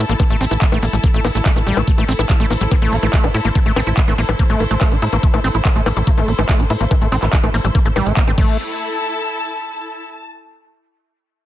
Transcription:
Already playing: E4 A4 A5
0.09 A1 A#3, closed hi-hat
0.20 A3, kick, closed hi-hat, high bongo
0.30 A1 A3, closed hi-hat
0.41 A1 C4, open hi-hat
0.51 A1 E4, closed hi-hat, high bongo
0.62 A3, kick, clap, closed hi-hat
0.72 A1 A3, closed hi-hat, high bongo
0.83 A1 A#3, open hi-hat
0.93 A1 G3, closed hi-hat
1.04 A#3, kick, closed hi-hat, high bongo
1.14 A1 A3, closed hi-hat
1.25 A1 A#3, open hi-hat, high bongo
1.35 A1 A3, closed hi-hat
1.46 A3, kick, clap, closed hi-hat
1.56 A1 A3, closed hi-hat, high bongo
1.67 A1 G3, open hi-hat
1.77 A1 A#3, closed hi-hat, high bongo
1.88 A3, kick, closed hi-hat
1.98 A1 A3, closed hi-hat, high bongo
2.09 A1 C4, open hi-hat
2.19 A1 E4, closed hi-hat, high bongo
2.30 A3, kick, clap, closed hi-hat
2.40 A1 A3, closed hi-hat
2.49 A1 A#3 C5, open hi-hat, high bongo
2.61 A1 G3, closed hi-hat
2.71 A#3, kick, closed hi-hat, high bongo
2.82 A1 A3, closed hi-hat
2.92 A1 A#3, open hi-hat
3.03 A1 A3, closed hi-hat, high bongo
3.13 A3, kick, clap, closed hi-hat
3.24 A1 E4, closed hi-hat, high bongo
3.34 A2 E4, open hi-hat
3.45 A1 A#3, closed hi-hat
3.55 A3, kick, closed hi-hat, high bongo
3.66 A1 A3, closed hi-hat
3.76 A1 C4, open hi-hat, high bongo
3.87 A1 E4, closed hi-hat
3.97 A3, kick, clap, closed hi-hat
4.08 A1 A3, closed hi-hat, high bongo
4.18 A1 A#3, open hi-hat
4.29 A1 G3, closed hi-hat, high bongo
4.39 A#3, kick, closed hi-hat
4.50 A1 A3, closed hi-hat
4.60 A1 A#3, open hi-hat, high bongo
4.71 A1 A3, closed hi-hat
4.81 A3, kick, clap, closed hi-hat, high bongo
4.92 A1 E4, closed hi-hat
5.02 A2 E4, open hi-hat
5.13 A1 A#3, closed hi-hat, high bongo
5.23 A3, kick, closed hi-hat
5.34 A1 A3, closed hi-hat, high bongo
5.44 A1 C4, open hi-hat
5.55 A1 E4, closed hi-hat
5.65 A3, kick, clap, closed hi-hat, high bongo
5.76 A1 A3, closed hi-hat
5.86 A1 A#3, open hi-hat, high bongo
5.97 A1 G3, closed hi-hat
6.07 A#3, kick, closed hi-hat
6.18 A1 A3, closed hi-hat, high bongo
6.28 A1 A#3, open hi-hat
6.39 A1 A3, closed hi-hat, high bongo
6.49 A3, kick, clap, closed hi-hat
6.60 A1 E4, closed hi-hat
6.70 A2 E4, open hi-hat, high bongo
6.81 A1 A#3, closed hi-hat
6.91 A3, kick, closed hi-hat, high bongo
7.02 A1 A3, closed hi-hat
7.12 A1 C4, open hi-hat
7.22 A1 E4, clap, closed hi-hat, high bongo
7.33 A3, kick, clap, closed hi-hat
7.43 A1 A3, closed hi-hat, high bongo
7.54 A1 A#3, open hi-hat
7.64 A1 G3, closed hi-hat
7.75 A#3, kick, open hi-hat, high bongo
7.85 A1 A3, closed hi-hat
7.96 A1 G3, open hi-hat, high bongo
8.06 A1 A3, closed hi-hat
8.17 A#3, kick, clap, closed hi-hat
8.27 A1 C4, closed hi-hat, high bongo
8.38 A1 A3 E4, kick, crash
8.44 A4
8.71 A5

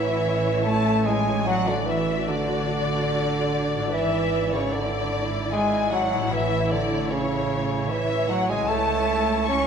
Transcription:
Already playing: A1 A2 E3 C#4 E4 A4 C#5 E5
0.64 A3 A5
1.05 G#3 G#5
1.29 A2
1.34 D4
1.38 F#4
1.43 F#3 A4
1.47 F#3 F#4 D5 F#5
1.68 D3 D5
1.87 E3 E5
2.28 D3 D5
3.75 G#2
3.79 D4
3.84 E4
3.89 E4 B4
3.93 G#1 E3 E5
4.53 C#3 C#5
4.73 D3 D5
5.52 G#3 G#5
5.91 F#3 F#5
6.14 A2
6.18 C#4
6.23 E4
6.27 A4 E5
6.32 A1 A2 E3 C#5 E5
6.70 D3 D5
7.10 C#3 C#5
7.90 E3 E5
8.30 F#3 F#5
8.50 C#3 G#3 G#5
8.56 C#4
8.60 E4
8.65 A3 E4 A4
8.69 C#2 A3 A5
9.49 C#4 C#6

